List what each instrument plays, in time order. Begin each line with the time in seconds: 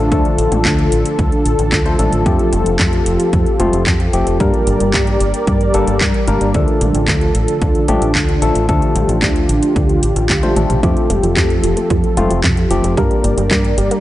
Already playing: analog synth pad D3 D4 F4 A4
0.12 fingered electric bass D2, tine electric piano F3 A3 D4 A4, kick, closed hi-hat
0.25 closed hi-hat
0.38 fingered electric bass A1, closed hi-hat
0.52 fingered electric bass A1, closed hi-hat, high tom
0.65 fingered electric bass D2, kick, clap, closed hi-hat
0.79 closed hi-hat
0.92 fingered electric bass A1, closed hi-hat
1.05 closed hi-hat
1.19 fingered electric bass D2, kick, closed hi-hat
1.32 closed hi-hat
1.46 fingered electric bass A1, closed hi-hat
1.59 fingered electric bass A1, closed hi-hat
1.72 fingered electric bass D2, kick, clap, closed hi-hat
1.86 tine electric piano F3 A3 D4 C5, closed hi-hat
1.99 fingered electric bass A1, tine electric piano F3 A3 D4 A4, closed hi-hat, high tom
2.12 fingered electric bass A1, closed hi-hat
2.26 fingered electric bass F2, tine electric piano F3 A3 C4 G4, analog synth pad F3 F4 G4, kick, closed hi-hat
2.39 closed hi-hat
2.53 fingered electric bass F1, closed hi-hat, high tom
2.66 fingered electric bass F1, closed hi-hat
2.79 fingered electric bass F2, kick, clap, closed hi-hat
2.93 closed hi-hat
3.06 fingered electric bass F1, closed hi-hat
3.20 closed hi-hat
3.33 fingered electric bass F2, kick, closed hi-hat
3.46 closed hi-hat
3.60 fingered electric bass F1, tine electric piano F3 A3 C4 F4, closed hi-hat, high tom
3.73 fingered electric bass F1, closed hi-hat
3.86 fingered electric bass F2, kick, clap, closed hi-hat
4.00 closed hi-hat
4.13 fingered electric bass F1, tine electric piano F3 A3 C4 G4, closed hi-hat
4.27 fingered electric bass F1, closed hi-hat
4.40 fingered electric bass G2, tine electric piano G3 A#3 D4 A#4, analog synth pad G3 A#4 D5, kick, closed hi-hat
4.54 closed hi-hat
4.67 fingered electric bass G1, closed hi-hat
4.80 fingered electric bass G1, closed hi-hat
4.94 fingered electric bass G2, kick, clap, closed hi-hat
5.07 closed hi-hat
5.20 fingered electric bass G1, closed hi-hat
5.34 closed hi-hat
5.47 fingered electric bass G2, kick, closed hi-hat
5.61 closed hi-hat
5.74 fingered electric bass G1, tine electric piano G3 A#3 D4 A4, closed hi-hat
5.87 fingered electric bass G1, closed hi-hat
6.01 fingered electric bass G2, kick, clap, closed hi-hat
6.14 closed hi-hat
6.28 fingered electric bass G1, tine electric piano G3 A#3 D4 A#4, closed hi-hat, high tom
6.41 fingered electric bass G1, closed hi-hat
6.54 fingered electric bass D2, analog synth pad D3 D4 F4 A4, tine electric piano F3 A3 D4 A4, kick, closed hi-hat
6.68 closed hi-hat
6.81 fingered electric bass A1, closed hi-hat, high tom
6.95 fingered electric bass A1, closed hi-hat
7.08 fingered electric bass D2, kick, clap, closed hi-hat
7.21 closed hi-hat
7.35 fingered electric bass A1, closed hi-hat
7.48 closed hi-hat
7.62 fingered electric bass D2, kick, closed hi-hat
7.75 closed hi-hat
7.88 fingered electric bass A1, tine electric piano F3 A3 D4 G4, closed hi-hat, high tom
8.02 fingered electric bass A1, closed hi-hat
8.15 fingered electric bass D2, kick, clap, closed hi-hat
8.29 closed hi-hat
8.42 fingered electric bass A1, tine electric piano F3 A3 D4 A4, closed hi-hat
8.55 fingered electric bass A1, closed hi-hat
8.69 fingered electric bass D2, tine electric piano F3 A3 D4 A4, analog synth pad G4, kick, closed hi-hat
8.82 closed hi-hat
8.95 fingered electric bass A1, closed hi-hat, high tom
9.09 fingered electric bass A1, closed hi-hat
9.22 fingered electric bass D2, kick, clap, closed hi-hat
9.36 closed hi-hat
9.49 fingered electric bass A1, closed hi-hat
9.63 closed hi-hat
9.76 fingered electric bass D2, kick, closed hi-hat
9.89 closed hi-hat
10.03 fingered electric bass A1, closed hi-hat
10.16 fingered electric bass A1, closed hi-hat
10.30 fingered electric bass D2, kick, clap, closed hi-hat
10.43 tine electric piano F3 A3 D4 C5, closed hi-hat, high tom
10.56 fingered electric bass A1, tine electric piano F3 A3 D4 A4, closed hi-hat, mid tom
10.70 fingered electric bass A1, closed hi-hat, mid tom
10.83 fingered electric bass F2, tine electric piano F3 A3 C4 G4, synth arpeggio sound F3, analog synth pad F3 A4, kick, closed hi-hat
10.97 closed hi-hat
11.10 fingered electric bass F1, synth arpeggio sound A3, closed hi-hat, high tom
11.23 fingered electric bass F1, synth arpeggio sound F3, closed hi-hat
11.37 fingered electric bass F2, synth arpeggio sound F3, kick, clap, closed hi-hat
11.50 closed hi-hat
11.63 fingered electric bass F1, synth arpeggio sound F3, closed hi-hat
11.77 synth arpeggio sound A3, closed hi-hat
11.90 fingered electric bass F2, synth arpeggio sound F3, kick, closed hi-hat
12.04 closed hi-hat
12.17 fingered electric bass F1, tine electric piano F3 A3 C4 F4, synth arpeggio sound F4, closed hi-hat, high tom
12.30 fingered electric bass F1, synth arpeggio sound F3, closed hi-hat
12.44 fingered electric bass F2, synth arpeggio sound C3, kick, clap, closed hi-hat
12.57 closed hi-hat
12.71 fingered electric bass F1, tine electric piano F3 A3 C4 G4, synth arpeggio sound F3, closed hi-hat
12.84 fingered electric bass F1, synth arpeggio sound A3, closed hi-hat
12.97 fingered electric bass G2, tine electric piano G3 A#3 D4 A#4, synth arpeggio sound G3, analog synth pad G3 G4 A#4 D5, kick, closed hi-hat
13.11 closed hi-hat
13.24 fingered electric bass G1, synth arpeggio sound A#3, closed hi-hat
13.37 fingered electric bass G1, synth arpeggio sound G3, closed hi-hat
13.51 fingered electric bass G2, synth arpeggio sound G3, kick, clap, closed hi-hat
13.65 closed hi-hat
13.78 fingered electric bass G1, synth arpeggio sound G3, closed hi-hat
13.91 synth arpeggio sound A#3, closed hi-hat